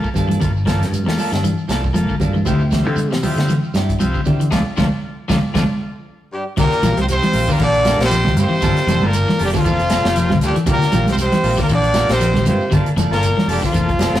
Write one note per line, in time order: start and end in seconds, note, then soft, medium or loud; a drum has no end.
0.04 muted clean electric guitar stroke medium
0.04 kick medium
0.04 shekere soft
0.14 0.37 G2 medium
0.14 0.29 F3 medium
0.14 0.29 A#3 medium
0.14 0.29 D4 medium
0.14 0.28 A4 medium
0.14 kick medium
0.14 closed hi-hat medium
0.14 low conga medium
0.14 shekere medium
0.29 0.38 E3 medium
0.29 0.44 A#3 soft
0.29 0.44 D4 soft
0.29 0.43 A4 soft
0.29 closed hi-hat soft
0.29 high conga medium
0.29 shekere soft
0.40 0.82 G1 loud
0.40 0.61 D3 medium
0.40 0.52 A#3 medium
0.40 0.52 F4 medium
0.40 0.52 A4 medium
0.40 kick medium
0.40 closed hi-hat medium
0.40 low conga medium
0.40 shekere medium
0.56 shekere soft
0.66 0.87 E3 medium
0.66 0.83 F3 medium
0.66 0.82 A#3 medium
0.66 0.83 A#3 medium
0.66 0.83 D4 medium
0.66 0.83 F4 medium
0.66 0.83 A4 medium
0.66 kick medium
0.66 snare medium
0.66 closed hi-hat soft
0.66 high conga medium
0.66 shekere medium
0.81 1.07 G2 medium
0.81 snare soft
0.81 closed hi-hat medium
0.81 shekere soft
0.92 closed hi-hat medium
0.92 high conga medium
0.92 shekere medium
1.06 1.16 E2 medium
1.06 1.27 E3 medium
1.06 1.32 A#3 medium
1.06 1.32 F4 medium
1.06 1.32 A4 medium
1.06 snare medium
1.06 high conga medium
1.06 shekere soft
1.18 1.32 F3 medium
1.18 1.31 A#3 medium
1.18 1.31 D4 medium
1.18 1.30 A4 medium
1.18 open hi-hat medium
1.18 high conga medium
1.18 shekere medium
1.32 1.53 G2 medium
1.32 1.42 D3 medium
1.32 1.47 A#3 soft
1.32 1.46 D4 soft
1.32 1.46 A4 medium
1.32 snare medium
1.32 closed hi-hat soft
1.32 shekere soft
1.44 1.65 E3 medium
1.44 closed hi-hat medium
1.44 high conga medium
1.44 shekere medium
1.58 shekere soft
1.68 1.90 C2 medium
1.68 1.85 F3 medium
1.68 1.85 A#3 medium
1.68 1.81 A#3 medium
1.68 1.86 D4 medium
1.68 1.81 F4 medium
1.68 1.86 A4 medium
1.68 1.81 A4 medium
1.68 snare medium
1.68 closed hi-hat soft
1.68 high conga medium
1.68 shekere medium
1.83 kick medium
1.83 shekere soft
1.93 2.06 F1 medium
1.93 2.06 F3 medium
1.93 2.15 A#3 medium
1.93 2.15 F4 medium
1.93 2.16 A4 loud
1.93 closed hi-hat medium
1.93 high conga medium
1.93 shekere medium
2.09 2.30 D3 medium
2.09 kick medium
2.09 shekere soft
2.20 2.42 G2 medium
2.20 2.37 F3 medium
2.20 2.37 A#3 medium
2.20 2.37 D4 medium
2.20 2.37 A4 medium
2.20 kick medium
2.20 closed hi-hat soft
2.20 low conga medium
2.20 shekere medium
2.34 2.44 E3 medium
2.34 high conga medium
2.34 shekere soft
2.45 2.86 D2 loud
2.45 2.67 D3 medium
2.45 2.63 F3 medium
2.45 2.62 C4 medium
2.45 2.63 C4 medium
2.45 2.62 E4 medium
2.45 2.63 E4 medium
2.45 2.63 F4 medium
2.45 2.63 G4 medium
2.45 kick medium
2.45 closed hi-hat medium
2.45 low conga medium
2.45 shekere medium
2.59 shekere soft
2.71 2.93 E3 medium
2.71 2.89 F3 medium
2.71 2.89 C4 medium
2.71 2.89 E4 medium
2.71 2.89 G4 medium
2.71 kick medium
2.71 snare medium
2.71 closed hi-hat soft
2.71 high conga medium
2.71 shekere medium
2.84 3.11 D3 medium
2.84 2.99 C4 medium
2.84 2.99 E4 medium
2.84 2.99 F4 medium
2.84 3.00 G4 medium
2.84 shekere soft
2.96 closed hi-hat medium
2.96 high conga medium
2.96 shekere medium
3.11 3.21 C3 medium
3.11 3.33 E3 medium
3.11 snare medium
3.11 shekere soft
3.22 3.40 F3 medium
3.22 3.54 C4 medium
3.22 3.40 C4 medium
3.22 3.54 E4 medium
3.22 3.41 E4 medium
3.22 3.55 F4 medium
3.22 3.54 G4 medium
3.22 3.41 G4 medium
3.22 open hi-hat medium
3.22 high conga medium
3.22 low conga medium
3.22 shekere medium
3.36 3.58 D3 medium
3.36 3.47 D3 medium
3.36 snare medium
3.36 closed hi-hat soft
3.36 shekere soft
3.48 3.70 E3 medium
3.48 closed hi-hat medium
3.48 high conga medium
3.48 shekere medium
3.63 shekere soft
3.74 3.96 G2 loud
3.74 3.92 F3 medium
3.74 3.92 C4 medium
3.74 3.92 E4 medium
3.74 3.92 G4 medium
3.74 snare medium
3.74 closed hi-hat soft
3.74 high conga medium
3.74 shekere medium
3.88 kick medium
3.88 closed hi-hat medium
3.88 shekere soft
3.99 4.12 C2 medium
3.99 4.12 F3 medium
3.99 4.21 C4 medium
3.99 4.21 E4 medium
3.99 4.21 F4 medium
3.99 4.21 G4 loud
3.99 closed hi-hat medium
3.99 high conga medium
3.99 shekere medium
4.14 4.35 D3 medium
4.14 muted fingered electric bass stroke soft
4.14 kick medium
4.14 shekere soft
4.25 4.47 D3 loud
4.25 4.43 F3 medium
4.25 4.43 C4 medium
4.25 4.43 E4 medium
4.25 4.43 G4 medium
4.25 kick medium
4.25 closed hi-hat soft
4.25 low conga medium
4.25 shekere medium
4.39 4.50 E3 medium
4.39 closed hi-hat soft
4.39 shekere soft
4.51 4.63 D2 loud
4.51 4.61 C3 medium
4.51 4.61 D3 medium
4.51 4.60 F3 medium
4.51 4.61 C4 medium
4.51 4.61 D4 medium
4.51 4.61 F4 medium
4.51 4.61 A4 medium
4.51 kick medium
4.51 snare medium
4.51 high conga medium
4.51 shekere medium
4.77 4.89 D2 loud
4.77 4.87 C3 medium
4.77 4.86 D3 medium
4.77 4.87 F3 medium
4.77 4.87 C4 medium
4.77 4.87 D4 medium
4.77 4.87 F4 medium
4.77 4.87 A4 medium
4.77 kick medium
4.77 snare medium
4.77 high conga medium
4.77 shekere medium
5.28 5.40 D2 medium
5.28 5.38 C3 medium
5.28 5.38 D3 medium
5.28 5.38 F3 medium
5.28 5.38 C4 medium
5.28 5.38 D4 medium
5.28 5.39 D4 medium
5.28 5.38 F4 medium
5.28 5.39 F4 medium
5.28 5.38 A4 medium
5.28 kick medium
5.28 snare medium
5.28 high conga medium
5.28 shekere loud
5.54 5.65 D2 medium
5.54 5.64 C3 medium
5.54 5.64 D3 medium
5.54 5.64 F3 medium
5.54 5.64 C4 medium
5.54 5.64 D4 medium
5.54 5.64 F4 medium
5.54 5.64 A4 medium
5.54 kick medium
5.54 snare medium
5.54 high conga medium
5.54 shekere medium
6.32 6.43 G2 medium
6.32 6.46 G3 medium
6.32 6.44 G4 medium
6.57 6.70 C2 loud
6.57 6.95 A#2 loud
6.57 6.78 D3 medium
6.57 6.74 F3 medium
6.57 6.88 D4 medium
6.57 6.89 F4 medium
6.57 6.75 F4 medium
6.57 6.75 G4 medium
6.57 6.89 A#4 medium
6.57 muted clean electric guitar stroke medium
6.57 kick medium
6.57 closed hi-hat medium
6.57 low conga loud
6.57 shekere medium
6.61 6.96 A#3 medium
6.61 6.96 A#4 loud
6.72 closed hi-hat soft
6.82 6.95 A#1 loud
6.82 7.04 E3 medium
6.82 7.00 F3 medium
6.82 7.00 A#3 medium
6.82 7.00 F4 medium
6.82 7.00 G4 medium
6.82 snare soft
6.82 closed hi-hat medium
6.82 high conga loud
6.82 shekere medium
6.97 7.18 C2 medium
6.97 7.02 C3 medium
6.97 closed hi-hat soft
6.97 high conga medium
6.97 shekere soft
7.01 7.05 C4 medium
7.01 7.05 C5 medium
7.09 7.50 C3 medium
7.09 7.54 C5 loud
7.09 closed hi-hat medium
7.09 shekere loud
7.13 7.54 C4 medium
7.23 7.44 E3 medium
7.23 closed hi-hat soft
7.23 high conga medium
7.33 7.46 A#1 medium
7.33 7.49 F3 medium
7.33 7.49 A#3 medium
7.33 7.39 F4 medium
7.33 7.49 F4 medium
7.33 7.40 A#4 medium
7.33 open hi-hat medium
7.33 shekere soft
7.48 7.60 A#2 medium
7.48 7.58 D3 medium
7.48 7.64 A#3 soft
7.48 7.63 D4 medium
7.48 7.63 F4 medium
7.48 7.64 F4 soft
7.48 7.63 G4 soft
7.48 7.63 A#4 medium
7.48 kick medium
7.48 low conga medium
7.48 shekere medium
7.52 7.62 A#3 medium
7.52 7.62 A#4 medium
7.58 7.93 A#1 loud
7.58 7.98 D3 loud
7.58 7.80 E3 medium
7.58 kick medium
7.58 closed hi-hat medium
7.58 shekere medium
7.64 7.99 D4 loud
7.64 7.99 D5 loud
7.74 closed hi-hat soft
7.85 8.03 A#3 medium
7.85 8.16 D4 medium
7.85 8.16 F4 medium
7.85 8.03 G4 medium
7.85 8.17 A#4 medium
7.85 muted clean electric guitar stroke medium
7.85 snare medium
7.85 closed hi-hat medium
7.85 high conga loud
7.85 shekere medium
7.99 8.37 A#1 medium
7.99 8.35 C3 loud
7.99 snare medium
7.99 closed hi-hat soft
7.99 shekere soft
8.03 8.36 C4 medium
8.03 8.37 C5 loud
8.10 8.22 F3 medium
8.10 closed hi-hat medium
8.10 shekere medium
8.25 8.46 D3 medium
8.25 8.37 A#3 soft
8.25 8.38 F4 medium
8.25 8.37 G4 medium
8.25 snare soft
8.25 high conga medium
8.25 low conga medium
8.37 8.49 G2 loud
8.37 9.07 C3 medium
8.37 8.54 F3 medium
8.37 8.54 A#3 medium
8.37 9.09 C4 medium
8.37 8.54 F4 medium
8.37 8.55 G4 medium
8.37 closed hi-hat medium
8.37 high conga medium
8.37 shekere medium
8.43 9.09 C5 loud
8.49 8.59 E3 medium
8.49 muted fingered electric bass stroke soft
8.49 shekere soft
8.61 8.74 G1 loud
8.61 8.83 D3 loud
8.61 8.79 F3 medium
8.61 8.79 A#3 medium
8.61 8.80 D4 medium
8.61 8.79 F4 medium
8.61 8.79 A4 medium
8.61 8.80 A4 medium
8.61 kick medium
8.61 snare soft
8.61 closed hi-hat medium
8.61 low conga medium
8.61 shekere medium
8.77 snare soft
8.77 closed hi-hat soft
8.87 8.99 F1 loud
8.87 9.09 E3 medium
8.87 9.05 A#3 medium
8.87 9.05 D4 medium
8.87 9.05 A4 medium
8.87 muted clean electric guitar stroke medium
8.87 snare soft
8.87 closed hi-hat medium
8.87 high conga loud
8.87 shekere medium
9.02 9.24 G1 medium
9.02 9.40 A#2 medium
9.02 9.16 A#3 medium
9.02 9.17 F4 medium
9.02 9.17 A4 medium
9.02 high conga medium
9.02 shekere soft
9.07 9.42 A#3 medium
9.07 9.42 A#4 loud
9.13 closed hi-hat medium
9.13 shekere medium
9.28 9.49 E3 medium
9.28 snare soft
9.28 high conga medium
9.38 9.52 F1 medium
9.38 9.46 G2 medium
9.38 9.54 F3 medium
9.38 9.50 A#3 medium
9.38 9.54 A#3 medium
9.38 9.53 D4 medium
9.38 9.50 F4 medium
9.38 9.51 A4 medium
9.38 open hi-hat medium
9.38 shekere soft
9.43 9.49 G3 medium
9.43 9.50 G4 medium
9.54 10.39 F2 medium
9.54 9.63 D3 medium
9.54 10.39 F3 medium
9.54 9.69 A#3 soft
9.54 9.68 D4 soft
9.54 9.68 A4 medium
9.54 kick medium
9.54 snare soft
9.54 low conga medium
9.54 shekere medium
9.59 10.40 F4 loud
9.65 9.98 F1 medium
9.65 9.86 E3 medium
9.65 9.81 A#3 medium
9.65 9.81 F4 medium
9.65 9.82 A4 medium
9.65 kick medium
9.65 closed hi-hat medium
9.65 shekere medium
9.79 closed hi-hat soft
9.90 10.07 F3 medium
9.90 10.07 A#3 medium
9.90 10.07 D4 medium
9.90 10.07 A4 medium
9.90 snare medium
9.90 closed hi-hat medium
9.90 high conga medium
9.90 shekere loud
10.05 10.41 F1 medium
10.05 10.30 A#3 medium
10.05 10.30 F4 medium
10.05 10.31 G4 medium
10.05 snare medium
10.05 shekere soft
10.16 10.28 F3 medium
10.16 closed hi-hat medium
10.16 shekere medium
10.30 10.51 D3 medium
10.30 snare soft
10.30 high conga medium
10.30 low conga medium
10.41 10.53 D2 loud
10.41 10.55 G2 medium
10.41 10.58 F3 medium
10.41 10.58 A#3 medium
10.41 10.59 D4 medium
10.41 10.59 A4 medium
10.41 closed hi-hat medium
10.41 shekere medium
10.46 10.56 G3 medium
10.46 10.57 G4 medium
10.56 10.65 E3 medium
10.56 closed hi-hat soft
10.56 shekere soft
10.66 10.79 C2 loud
10.66 10.88 D3 loud
10.66 10.83 F3 medium
10.66 10.84 A#3 medium
10.66 10.99 D4 medium
10.66 10.84 F4 medium
10.66 10.99 F4 medium
10.66 10.84 G4 medium
10.66 10.99 A#4 medium
10.66 kick medium
10.66 closed hi-hat medium
10.66 low conga medium
10.66 shekere medium
10.70 11.06 A#2 medium
10.70 11.07 A#3 medium
10.70 11.07 A#4 loud
10.81 muted fingered electric bass stroke soft
10.81 snare soft
10.81 closed hi-hat soft
10.92 11.05 A#1 loud
10.92 11.14 E3 medium
10.92 11.10 F3 medium
10.92 11.10 A#3 medium
10.92 11.10 F4 medium
10.92 11.10 G4 medium
10.92 closed hi-hat medium
10.92 high conga loud
10.92 shekere medium
11.07 11.28 C2 medium
11.07 11.14 C3 medium
11.07 snare soft
11.07 closed hi-hat soft
11.07 high conga medium
11.07 shekere soft
11.12 11.16 C4 medium
11.12 11.16 C5 medium
11.17 11.57 C3 medium
11.17 11.57 C5 loud
11.17 closed hi-hat medium
11.17 shekere loud
11.24 11.59 C4 medium
11.32 11.54 E3 medium
11.32 snare soft
11.32 closed hi-hat soft
11.32 high conga medium
11.43 11.56 A#1 medium
11.43 11.58 F3 medium
11.43 11.57 A#3 medium
11.43 11.57 F4 medium
11.43 11.50 F4 medium
11.43 11.56 G4 medium
11.43 11.51 A#4 medium
11.43 open hi-hat medium
11.43 shekere soft
11.57 11.65 A#2 medium
11.57 11.67 D3 medium
11.57 11.73 A#3 soft
11.57 11.72 D4 medium
11.57 11.73 F4 soft
11.57 11.73 F4 medium
11.57 11.72 G4 soft
11.57 11.73 A#4 medium
11.57 kick medium
11.57 snare soft
11.57 low conga medium
11.57 shekere medium
11.62 11.67 A#3 medium
11.62 11.67 A#4 medium
11.69 12.03 A#1 loud
11.69 12.08 D3 medium
11.69 11.91 E3 loud
11.69 kick medium
11.69 closed hi-hat medium
11.69 shekere medium
11.73 12.09 D4 loud
11.73 12.09 D5 loud
11.84 closed hi-hat soft
11.94 12.11 F3 medium
11.94 12.11 A#3 medium
11.94 12.26 D4 medium
11.94 12.12 F4 medium
11.94 12.26 F4 medium
11.94 12.12 G4 medium
11.94 12.27 A#4 medium
11.94 snare medium
11.94 closed hi-hat medium
11.94 high conga medium
11.94 shekere loud
12.09 12.48 A#1 loud
12.09 12.44 C3 medium
12.09 12.46 C4 medium
12.09 snare medium
12.09 closed hi-hat soft
12.09 shekere soft
12.13 12.46 C5 medium
12.20 12.32 F3 medium
12.20 snare soft
12.20 closed hi-hat medium
12.20 shekere medium
12.34 12.56 D3 medium
12.34 snare soft
12.34 high conga medium
12.34 low conga medium
12.45 12.58 G2 loud
12.45 12.83 C3 medium
12.45 12.63 F3 medium
12.45 12.63 A#3 medium
12.45 12.63 F4 medium
12.45 12.63 G4 medium
12.45 12.84 C5 medium
12.45 closed hi-hat medium
12.45 high conga medium
12.45 shekere medium
12.50 12.84 C4 medium
12.60 muted fingered electric bass stroke soft
12.60 shekere soft
12.71 12.84 G1 loud
12.71 12.92 D3 medium
12.71 12.89 F3 medium
12.71 12.89 A#3 medium
12.71 12.89 D4 medium
12.71 12.89 F4 medium
12.71 12.89 A4 medium
12.71 12.90 A4 medium
12.71 kick medium
12.71 closed hi-hat medium
12.71 low conga medium
12.71 shekere medium
12.86 closed hi-hat soft
12.96 13.09 F1 loud
12.96 13.18 E3 medium
12.96 13.14 F3 medium
12.96 13.14 A#3 medium
12.96 13.15 D4 medium
12.96 13.15 A4 medium
12.96 closed hi-hat medium
12.96 high conga medium
12.96 shekere medium
13.10 13.33 G1 medium
13.10 13.47 A#2 medium
13.10 13.26 A#3 medium
13.10 13.26 F4 medium
13.10 13.26 A4 loud
13.10 13.48 A#4 medium
13.10 snare soft
13.10 shekere soft
13.15 13.48 A#3 medium
13.23 closed hi-hat medium
13.23 shekere loud
13.37 13.58 E3 medium
13.37 snare soft
13.37 high conga medium
13.47 13.60 F1 medium
13.47 13.63 G2 medium
13.47 13.66 F3 medium
13.47 13.60 A#3 medium
13.47 13.66 A#3 medium
13.47 13.66 D4 medium
13.47 13.60 F4 medium
13.47 13.63 G4 medium
13.47 13.60 A4 medium
13.47 13.66 A4 medium
13.47 open hi-hat medium
13.47 shekere soft
13.52 13.64 G3 medium
13.62 14.20 F2 medium
13.62 13.72 D3 medium
13.62 14.20 F3 medium
13.62 14.20 F4 medium
13.62 kick medium
13.62 snare soft
13.62 shekere medium
13.73 14.08 F1 medium
13.73 13.95 E3 medium
13.73 13.91 A#3 medium
13.73 13.91 F4 medium
13.73 13.91 A4 medium
13.73 kick medium
13.73 closed hi-hat medium
13.73 shekere medium
13.89 kick medium
13.89 closed hi-hat soft
13.99 14.17 F3 medium
13.99 14.17 A#3 medium
13.99 14.17 D4 medium
13.99 14.18 A4 medium
13.99 snare medium
13.99 closed hi-hat medium
13.99 high conga loud
13.99 shekere medium
14.13 14.20 F1 medium
14.13 14.20 A#3 medium
14.13 14.20 F4 medium
14.13 14.20 A4 medium
14.13 snare medium
14.13 shekere soft